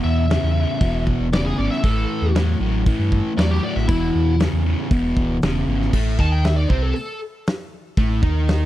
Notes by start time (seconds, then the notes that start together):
Already playing: E2 B2
0.04 E2 E5
0.30 E2 C#3, snare, open hi-hat
0.43 E2
0.55 E2 C#3
0.81 E1 E2 B2, kick, open hi-hat
1.07 kick
1.20 E1
1.32 E2 C#3 D5, snare, open hi-hat
1.45 G#4
1.58 G#1 E2 C#3 D5
1.71 E5, snare
1.84 A1 A2 E3 A4, kick, open hi-hat
2.22 E2
2.35 A2 F#3, snare, open hi-hat
2.60 A1 A2 F#3
2.86 A2 E3, kick, open hi-hat
2.99 G2
3.12 kick
3.37 E2 A2 F#3 D5, snare, open hi-hat
3.51 G4
3.63 A2 F#3 D5
3.76 A1 E5, snare
3.88 E1 E2 B2 E4, kick, open hi-hat
4.15 E2
4.40 E2 C#3, snare, open hi-hat
4.53 E2
4.65 E2 C#3
4.91 E1 E2 B2, kick, open hi-hat
5.16 D1, kick
5.42 E1 E2 C#3, snare, open hi-hat
5.67 G#1 E2 C#3
5.81 snare
5.93 A1 A2 A3, kick, crash
6.19 D#2 D#3 D#4 A5, kick
6.32 G5
6.44 E5, snare, open hi-hat
6.56 D5
6.69 C2 C3 C4 C5, kick
6.83 A4
6.94 A4, open hi-hat
7.47 snare, open hi-hat
7.97 A1 A2 A3, kick, open hi-hat
8.23 D#2 D#3 D#4, kick
8.48 snare, open hi-hat